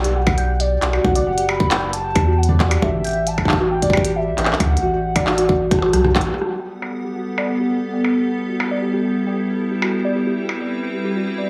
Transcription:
Already playing: B1 G5
0.04 G4, closed hi-hat
0.16 G4 F#5
0.27 kick, percussion blips
0.38 G5, closed hi-hat
0.60 D5, closed hi-hat
0.82 B1 G4, clap, closed hi-hat
0.93 F#4, percussion blips
1.04 B1 F#5, kick, mid tom
1.16 D5, closed hi-hat
1.27 F#1 G4
1.38 G4, closed hi-hat
1.49 G4 B5, percussion blips
1.60 kick
1.71 G5, clap, closed hi-hat
1.93 A5, closed hi-hat
2.16 E2 G4, kick, closed hi-hat, percussion blips
2.27 F#4
2.38 F#5
2.43 closed hi-hat
2.49 D5, mid tom
2.60 G4, kick, clap
2.71 G4, closed hi-hat, percussion blips
2.82 A1 G4 E5, kick, mid tom
3.04 G5, closed hi-hat
3.07 closed hi-hat
3.09 closed hi-hat
3.13 closed hi-hat
3.27 A5, closed hi-hat
3.38 kick, percussion blips
3.45 G4, kick, clap
3.53 kick
3.60 F#4
3.71 G5
3.82 D5, kick, closed hi-hat
3.90 G4, kick, percussion blips
3.97 kick
4.05 G4, closed hi-hat
4.16 G4 E5
4.38 A1 G5, clap, closed hi-hat
4.45 clap
4.53 clap
4.60 D2 F#5, kick, closed hi-hat, mid tom, percussion blips
4.77 closed hi-hat
4.82 A1 F#4
4.94 F#4
5.16 D5, kick, closed hi-hat, percussion blips
5.27 F#4, clap
5.38 F#4, closed hi-hat
5.49 F#4, kick
5.71 F#4, kick, cross-stick, closed hi-hat
5.79 F#4, cross-stick, percussion blips
5.86 cross-stick
5.93 C2 F#3, cross-stick, closed hi-hat
6.05 cross-stick, mid tom
6.16 A1, kick, clap
6.21 closed hi-hat
6.27 cross-stick
6.34 G3 B3 G4 A4 F#5, cross-stick
6.42 cross-stick
6.60 G5
6.82 percussion blips
7.05 G4
7.16 F#4
7.38 D5, percussion blips
7.49 G4
7.60 G4
7.71 G4
7.94 G5
8.04 percussion blips
8.16 E4
8.38 G4
8.49 F#4
8.60 percussion blips
8.71 D5
8.82 G4
8.94 G4
9.05 G4
9.27 G5
9.71 G4
9.82 F#4, percussion blips
9.94 C4 B4
10.05 D5
10.16 G4
10.27 G4
10.38 G4
10.49 percussion blips
10.60 G5
11.05 G4
11.16 F#4
11.38 D5

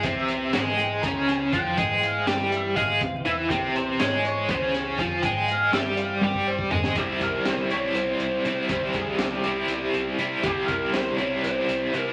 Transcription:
Already playing: E3 C5 G5
0.03 C2 C3 E3 C4 E5, kick, closed hi-hat
0.28 closed hi-hat
0.53 G#2 G#3 G#4, snare, closed hi-hat
0.77 G5, closed hi-hat
1.02 C#2 C#3 C#4 A#5, kick, closed hi-hat
1.28 G#5, snare, closed hi-hat
1.53 F2 F3 F4 G5, kick, closed hi-hat
1.77 G#2 G#3 G#4, kick, closed hi-hat
2.03 F5, closed hi-hat
2.27 G2 G3 G4 G5, snare, closed hi-hat
2.52 E5, closed hi-hat
2.75 G#2 G#3 G#4 F5, kick, snare, closed hi-hat
3.01 C2 C3, kick, closed hi-hat
3.25 E2 E3 E4 E5, closed hi-hat
3.49 C2 C3 C4 G5, kick, closed hi-hat
3.76 C5, closed hi-hat
3.99 G#2 G#3 G#4 C#5, snare, closed hi-hat
4.25 C#5, closed hi-hat
4.48 C#2 C#3 C#4 C5, kick, closed hi-hat
4.74 snare, closed hi-hat
4.98 F2 F3 F4 G#5, kick, snare, closed hi-hat
5.23 G#2 G#3 G#4 G5, kick, closed hi-hat
5.48 F5, closed hi-hat
5.72 G2 G3 G4 E5, snare, closed hi-hat
5.97 F5, closed hi-hat
6.21 G2 G3 G4 G5, high tom
6.34 kick
6.47 C5
6.59 kick
6.71 G#2 G#3 G#4, floor tom
6.84 snare
6.95 C2 C3 G3 C4 G4, kick, closed hi-hat
7.00 E4
7.20 C2 A#4, kick, snare, closed hi-hat
7.45 C2 C5, snare, closed hi-hat
7.70 C2 G3 C4 E4 C#5, closed hi-hat
7.74 C3
7.94 C2 C5, closed hi-hat
8.20 C2, closed hi-hat
8.44 C3 G3 C4 E4, snare, closed hi-hat
8.69 C2 C3 G3 C4 E4 C5, kick, closed hi-hat
8.93 C2 G#4, kick, closed hi-hat
9.17 C2 G4, snare, closed hi-hat
9.43 C2 C3 G3 C4, closed hi-hat
9.48 E4
9.67 C2, closed hi-hat
9.93 C2, closed hi-hat
10.18 C3 G3 C4 E4, closed hi-hat
10.23 C3
10.43 C2 C3 G3 C4 E4 G4, kick, closed hi-hat
10.67 C2 A#4, kick, closed hi-hat
10.93 C2 C5, snare, closed hi-hat
11.18 C2 G3 C4 E4 C#5, closed hi-hat
11.22 C3
11.43 C2 C5, closed hi-hat
11.68 C2, closed hi-hat
11.93 C3 G3 C4 E4, closed hi-hat
12.00 A#4

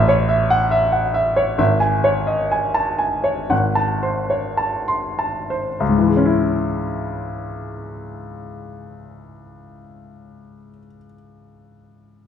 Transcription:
Already playing: A1 E5
0.08 C#5
0.29 E5
0.50 F#5
0.71 E5
0.92 F#5
1.14 E5
1.36 C#5
1.58 G#1 E5
1.80 G#5
2.04 C#5
2.27 D#5
2.52 G#5
2.74 A5
2.98 G#5
3.24 C#5
3.50 G#1 F#5
3.75 A5
4.03 C5
4.30 C#5
4.57 A5
4.88 C6
5.19 A5
5.50 C5
5.80 C#2
5.89 G#2
5.98 E3
6.08 G#3
6.17 C#4
6.26 E4

